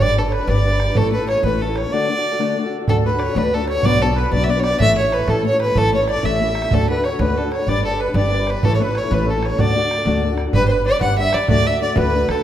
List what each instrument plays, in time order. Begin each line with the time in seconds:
0.00 upright bass G1, steel-string acoustic guitar G3 D4 G4 B4, accordion D5, vibraphone D5, fiddle D5
0.08 bodhran
0.16 steel-string acoustic guitar G3 D4 G4 B4, accordion A4, vibraphone A4, fiddle A4, bodhran
0.25 steel-string acoustic guitar D4 G4 B4
0.29 accordion B4, vibraphone B4, fiddle B4 C#5, bodhran
0.40 steel-string acoustic guitar D4 G4 B4
0.47 upright bass G1, steel-string acoustic guitar G3 D4 G4 B4, accordion D5, vibraphone D5, fiddle D5, bodhran
0.60 steel-string acoustic guitar G3, vibraphone D5
0.65 steel-string acoustic guitar D4 G4 B4, bodhran
0.70 steel-string acoustic guitar G4 B4, vibraphone D5
0.75 steel-string acoustic guitar D4
0.80 vibraphone B4, bodhran
0.87 steel-string acoustic guitar D4 G4 B4
0.94 upright bass A1, steel-string acoustic guitar A2 E3 A3 C#4 E4 A4, vibraphone A4, accordion A4, fiddle A4, bodhran
1.04 bodhran
1.11 steel-string acoustic guitar A3 C#4 E4, vibraphone B4, fiddle B4, bodhran
1.16 steel-string acoustic guitar A4
1.21 steel-string acoustic guitar A3 C#4 E4 A4
1.27 accordion C#5, vibraphone C#5, fiddle C#5, bodhran
1.36 steel-string acoustic guitar A3 C#4 E4 A4
1.42 upright bass A1, steel-string acoustic guitar A2 E3, vibraphone B4, accordion B4, fiddle B4, bodhran
1.46 steel-string acoustic guitar A3 C#4 E4 A4
1.59 steel-string acoustic guitar A3 C#4, vibraphone A4, accordion A4, fiddle A4, bodhran
1.63 steel-string acoustic guitar E4 A4
1.69 steel-string acoustic guitar A3 C#4 E4 A4
1.74 vibraphone C#5, accordion C#5, fiddle C#5, bodhran
1.84 steel-string acoustic guitar A3 C#4 E4 A4
1.90 steel-string acoustic guitar D3 A3 D4 F#4 A4, vibraphone D5, accordion D5, fiddle D5
2.08 steel-string acoustic guitar A3 D4 F#4 A4
2.16 steel-string acoustic guitar D4 F#4 A4
2.32 steel-string acoustic guitar D4 F#4 A4
2.38 steel-string acoustic guitar D3 A3 D4 F#4 A4
2.56 steel-string acoustic guitar A3 D4 F#4 A4
2.64 steel-string acoustic guitar D4 F#4 A4
2.79 steel-string acoustic guitar D4 F#4 A4
2.87 upright bass D2, steel-string acoustic guitar D3 A3 D4 F#4 A4, accordion A4, vibraphone A4, fiddle A4, bodhran
2.96 bodhran
3.04 steel-string acoustic guitar A3 D4 F#4 A4, accordion B4, fiddle B4
3.12 steel-string acoustic guitar D4 F#4 A4
3.19 vibraphone C#5, fiddle C#5 D5, bodhran
3.27 steel-string acoustic guitar D4 F#4 A4
3.35 upright bass D2, steel-string acoustic guitar D3 A3 D4 F#4 A4, accordion B4, vibraphone B4, fiddle B4, bodhran
3.52 steel-string acoustic guitar A3 D4 F#4 A4, vibraphone A4, accordion A4, fiddle A4, bodhran
3.60 steel-string acoustic guitar D4 F#4 A4
3.67 vibraphone C#5, accordion C#5, fiddle C#5, bodhran
3.76 steel-string acoustic guitar D4 F#4 A4
3.83 upright bass B1, steel-string acoustic guitar B2 F#3 B3 D4 F#4 B4, vibraphone D5, accordion D5, fiddle D5, bodhran
3.92 bodhran
3.99 steel-string acoustic guitar B3 D4, vibraphone A4, accordion A4, fiddle A4
4.03 steel-string acoustic guitar F#4
4.09 steel-string acoustic guitar B3 D4 F#4 B4
4.15 vibraphone B4, accordion B4, fiddle B4, bodhran
4.25 steel-string acoustic guitar B3 D4 F#4 B4
4.30 upright bass B1, steel-string acoustic guitar B2 F#3 B3 D4, vibraphone D5, accordion D5, fiddle D5, bodhran
4.34 steel-string acoustic guitar F#4 B4
4.44 accordion D5, fiddle E5
4.48 steel-string acoustic guitar B3 D4 F#4 B4, vibraphone D5, fiddle D5, bodhran
4.56 steel-string acoustic guitar B3 D4 F#4 B4, fiddle C#5
4.63 accordion D5, fiddle D5, vibraphone D5, bodhran
4.72 steel-string acoustic guitar B3 D4 F#4 B4
4.78 upright bass A1, steel-string acoustic guitar A2 E3 A3 C#4 E4 A4, accordion E5, vibraphone E5, fiddle E5, bodhran
4.89 bodhran
4.95 steel-string acoustic guitar A3 E4 A4, accordion C#5, vibraphone C#5, fiddle C#5, bodhran
5.03 steel-string acoustic guitar A3 C#4 E4 A4
5.12 fiddle B4, vibraphone B4, bodhran
5.19 steel-string acoustic guitar A3 C#4 E4 A4
5.27 upright bass A1, steel-string acoustic guitar A2 E3 A3 C#4 E4 A4, accordion A4, vibraphone A4, fiddle A4, bodhran
5.44 steel-string acoustic guitar A3 C#4 E4 A4, accordion C#5, vibraphone C#5, fiddle C#5, bodhran
5.51 steel-string acoustic guitar C#4 E4 A4
5.55 steel-string acoustic guitar A3
5.60 vibraphone B4, accordion B4, fiddle B4, bodhran
5.67 steel-string acoustic guitar A3 C#4 E4 A4
5.74 upright bass A1, steel-string acoustic guitar A2 E3 A3 C#4 E4 A4, accordion A4, vibraphone A4, fiddle A4, bodhran
5.84 bodhran
5.92 steel-string acoustic guitar A3 C#4 E4, accordion C#5, vibraphone C#5, fiddle C#5
6.00 steel-string acoustic guitar A3 C#4 E4 A4
6.08 accordion D5, vibraphone D5, fiddle D5, bodhran
6.16 steel-string acoustic guitar A3 C#4 E4 A4
6.23 upright bass A1, steel-string acoustic guitar A2 E3 A3 C#4 E4 A4, vibraphone E5, accordion E5, fiddle E5, bodhran
6.40 steel-string acoustic guitar A3 C#4 E4, bodhran
6.44 steel-string acoustic guitar A4
6.48 steel-string acoustic guitar A3 C#4 E4 A4
6.55 bodhran
6.62 steel-string acoustic guitar E4 A4, bodhran
6.66 steel-string acoustic guitar A3 C#4
6.71 upright bass D2, steel-string acoustic guitar D3 A3 D4 F#4 A4, vibraphone A4, accordion A4, fiddle A4, bodhran
6.80 bodhran
6.88 steel-string acoustic guitar A3 D4 F#4 A4, vibraphone B4, accordion B4, fiddle B4, bodhran
6.96 steel-string acoustic guitar D4 F#4 A4
7.03 vibraphone C#5, accordion C#5, fiddle C#5, bodhran
7.12 steel-string acoustic guitar D4 F#4 A4, fiddle C#5
7.19 upright bass D2, steel-string acoustic guitar D3 A3 D4 F#4 A4, vibraphone B4, accordion B4, fiddle B4, bodhran
7.36 steel-string acoustic guitar A3 D4 F#4 A4, vibraphone A4, fiddle A4, bodhran
7.43 steel-string acoustic guitar D4 F#4 A4
7.52 accordion C#5, vibraphone C#5, fiddle C#5, bodhran
7.59 steel-string acoustic guitar D4 F#4 A4
7.67 upright bass G1, steel-string acoustic guitar G3 D4 G4 B4, vibraphone D5, accordion D5, fiddle D5, bodhran
7.77 bodhran
7.84 steel-string acoustic guitar G3 D4 G4, vibraphone A4, accordion A4, fiddle A4
7.91 steel-string acoustic guitar D4 G4 B4
7.99 accordion B4, vibraphone B4, fiddle B4
8.06 steel-string acoustic guitar D4 G4 B4
8.14 upright bass G1, steel-string acoustic guitar G3 D4 G4 B4, vibraphone D5, accordion D5, fiddle D5, bodhran
8.28 steel-string acoustic guitar G3, vibraphone D5, bodhran
8.32 steel-string acoustic guitar D4 G4 B4
8.38 steel-string acoustic guitar G4 B4, vibraphone D5
8.42 steel-string acoustic guitar D4
8.47 vibraphone B4, accordion B4, fiddle B4, bodhran
8.55 steel-string acoustic guitar D4 G4 B4
8.63 upright bass A1, steel-string acoustic guitar A2 E3 A3 C#4 E4 A4, vibraphone A4, accordion A4, fiddle A4, bodhran
8.72 fiddle C#5, bodhran
8.79 steel-string acoustic guitar A3 C#4 E4 A4, accordion B4, vibraphone B4, fiddle B4, bodhran
8.87 steel-string acoustic guitar A3 C#4 E4 A4
8.95 accordion C#5, vibraphone C#5, fiddle C#5, bodhran
9.03 steel-string acoustic guitar A3 C#4 E4 A4
9.10 upright bass A1, steel-string acoustic guitar A2 E3 A3 C#4 E4 A4, accordion B4, vibraphone B4, fiddle B4, bodhran
9.26 steel-string acoustic guitar A3 C#4 E4 A4, accordion A4, vibraphone A4, fiddle A4, bodhran
9.35 steel-string acoustic guitar A3 C#4 E4 A4
9.43 accordion C#5, vibraphone C#5, fiddle C#5, bodhran
9.50 steel-string acoustic guitar A3 C#4 E4 A4
9.58 upright bass D2, steel-string acoustic guitar D3 A3 D4 F#4 A4, accordion D5, vibraphone D5, fiddle D5, bodhran
9.68 bodhran
9.74 steel-string acoustic guitar A3 D4 F#4 A4, bodhran
9.82 steel-string acoustic guitar D4 A4
9.91 bodhran
9.98 steel-string acoustic guitar D4 F#4 A4
10.05 upright bass D2, steel-string acoustic guitar D3 A3 D4 F#4 A4, bodhran
10.22 steel-string acoustic guitar A3 D4 F#4 A4, bodhran
10.30 steel-string acoustic guitar D4 F#4 A4
10.38 bodhran
10.45 steel-string acoustic guitar D4 F#4 A4
10.53 upright bass G1, steel-string acoustic guitar G3 D4 G4 B4, accordion B4, vibraphone B4, fiddle B4, bodhran
10.68 steel-string acoustic guitar G4 B4, accordion B4, vibraphone B4, fiddle B4 C5
10.73 steel-string acoustic guitar D4
10.84 steel-string acoustic guitar G3 D4 G4 B4, accordion D5, fiddle D5, vibraphone D5
11.00 upright bass G1, steel-string acoustic guitar G3 D4 G4 B4, vibraphone F#5, accordion F#5, fiddle F#5, bodhran
11.16 steel-string acoustic guitar G3 D4 G4 B4, accordion E5, vibraphone E5, fiddle E5
11.32 upright bass G1, steel-string acoustic guitar D4 G4 B4, accordion D5, fiddle D5, vibraphone D5, bodhran
11.48 upright bass D2, steel-string acoustic guitar D3 A3 D4 F#4 A4, accordion D5, vibraphone D5, fiddle D5, bodhran
11.65 steel-string acoustic guitar D4 F#4 A4, fiddle E5, accordion E5, vibraphone E5
11.81 steel-string acoustic guitar A3 D4 F#4 A4, vibraphone D5, accordion D5, fiddle D5
11.96 upright bass D2, steel-string acoustic guitar D3 A3 D4 F#4 A4, accordion B4, vibraphone B4, fiddle B4, bodhran
12.12 steel-string acoustic guitar A3 D4 F#4 A4
12.28 upright bass D2, steel-string acoustic guitar D4 F#4 A4, vibraphone A4, accordion A4, fiddle A4, bodhran